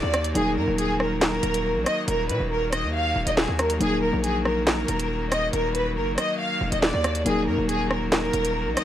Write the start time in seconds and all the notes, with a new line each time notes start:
Already playing: D#3 F#3 A#3 D#4 F#4 A#4 D5
0.03 D#2
0.14 cross-stick, closed hi-hat
0.24 closed hi-hat
0.34 D#1 F#3 A#3 D#4 G#4 A#4, closed hi-hat
0.57 F#2 A#4
0.68 D#1
0.78 G#4, closed hi-hat
1.00 A#4, cross-stick
1.21 A#4, snare, clap, closed hi-hat
1.43 D#1, closed hi-hat
1.54 closed hi-hat
1.75 A#1
1.86 D#5, cross-stick, closed hi-hat
2.08 D#1 A#4, closed hi-hat
2.29 A#2 B4, closed hi-hat
2.40 D#1
2.51 A#4
2.73 D#5, cross-stick, closed hi-hat
2.83 D#2
2.94 F5
3.16 D1
3.27 D#1 D#5, closed hi-hat
3.37 G#4, snare, clap
3.48 D#2
3.59 A#4, cross-stick, closed hi-hat
3.70 closed hi-hat
3.79 D#1 F#3 A#3 D#4 G#4 A#4, closed hi-hat
4.02 A#4
4.13 A#1
4.24 G#4, closed hi-hat
4.45 A#4, cross-stick
4.67 A#4, snare, clap, closed hi-hat
4.88 D#1, closed hi-hat
5.00 closed hi-hat
5.32 D#5, cross-stick, closed hi-hat
5.53 D#1 A#4, closed hi-hat
5.75 B4, closed hi-hat
5.96 F#1 A#4
6.18 D#5, cross-stick, closed hi-hat
6.39 F5
6.61 D#1
6.72 D#1 D#5, closed hi-hat
6.83 D5, snare, clap
6.93 D#2
7.04 cross-stick, closed hi-hat
7.15 closed hi-hat
7.25 D#1 D#3 F#3 A#3 D#4 F#4 G#4 A#4, closed hi-hat
7.47 F#2 A#4
7.58 D#1
7.69 G#4, closed hi-hat
7.91 A#4, cross-stick
8.12 A#4, snare, clap, closed hi-hat
8.33 D#1, closed hi-hat
8.45 closed hi-hat
8.66 A#1
8.77 D#5, cross-stick, closed hi-hat